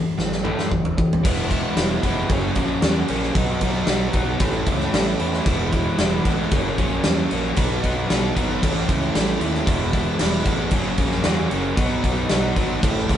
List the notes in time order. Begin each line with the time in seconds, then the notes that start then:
Already playing: A2 E3
0.18 A1 A2 E3, snare
0.32 snare
0.44 A2 E3 A3, mid tom
0.59 snare
0.70 F#1 A2 E3, kick
0.85 mid tom
0.98 A2 E3, kick
1.13 floor tom
1.23 E1 E3 G#3 B3 E4, kick, crash
1.50 G#3 B3 E4, kick, crash
1.76 E1 E3 G#3 B3 E4, snare, crash
2.03 F1 E3 G#3 B3 E4, kick, crash
2.29 F#1 F#2 C#3 F#3 A#3 C#4, kick, crash
2.55 A#1 F#2 C#3 F#3 A#3 C#4, kick, crash
2.82 E2 C#3 F#3 A#3 C#4, snare, crash
3.08 A#1 F#3 A#3 C#4, crash
3.23 snare
3.35 B1 B2 F#3 B3 D#4, kick, crash
3.61 B1 B3 D#4, kick, crash
3.65 F#3
3.87 B1 B2 F#3 B3 D#4, snare, crash
4.13 B1 F#3 B3 D#4, kick, crash
4.17 B2
4.40 A1 A2 E3 A3 C#4 E4, kick, crash
4.66 C#2 A2 E3 A3 C#4 E4, kick, crash
4.80 snare
4.94 A1 E3 A3 C#4 E4, snare, crash
5.19 E2 A3 C#4 E4, crash
5.34 snare
5.46 E1 E3 G#3 B3 E4, kick, crash
5.73 G#3 B3 E4, kick, crash
5.97 E1 E3 G#3 B3 E4, snare, crash
6.24 A1 E3 G#3 B3 E4, kick, crash
6.51 F#1 F#2 C#3 F#3 A#3 C#4, kick, crash
6.78 A#1 F#2 C#3 F#3 A#3 C#4, kick, crash
7.04 E2 C#3 F#3 A#3 C#4, snare, crash
7.30 A#1 F#3 A#3 C#4, crash
7.56 B1 B2 F#3 B3 D#4, kick, crash
7.82 B1 F#3 B3 D#4, kick, crash
8.08 B1 B2 F#3 B3 D#4, snare, crash
8.36 G#1 B2 F#3 B3 D#4, kick, crash
8.62 A1 A2 E3 A3 C#4 E4, kick, crash
8.88 C#2 A2 E3 A3 C#4 E4, kick, crash
9.15 A1 E3 A3 C#4 E4, snare, crash
9.39 D#2 A3 C#4 E4, crash
9.54 snare
9.66 E1 E3 G#3 B3 E4, kick, crash
9.93 G#3 B3 E4, kick, crash
10.19 E1 E3 G#3 B3 E4, snare, crash
10.45 A1 E3 G#3 B3 E4, kick, crash
10.71 F#1 F#2 C#3 F#3 A#3 C#4, kick, crash
10.98 A#1 F#2 C#3 F#3 A#3 C#4, kick, crash
11.11 snare
11.24 E2 C#3 F#3 A#3 C#4, snare, crash
11.50 F#1 F#3 A#3 C#4, crash
11.75 B1 B2 F#3 B3 D#4, kick, crash
12.02 B1 F#3 B3 D#4, kick, crash
12.29 B1 B2 F#3 B3 D#4, snare, crash
12.56 G#1 B2 F#3 B3 D#4, kick, crash
12.81 A1 A2 E3 A3 C#4 E4, kick, crash
13.07 C#2 A2 E3 A3 C#4 E4, kick, crash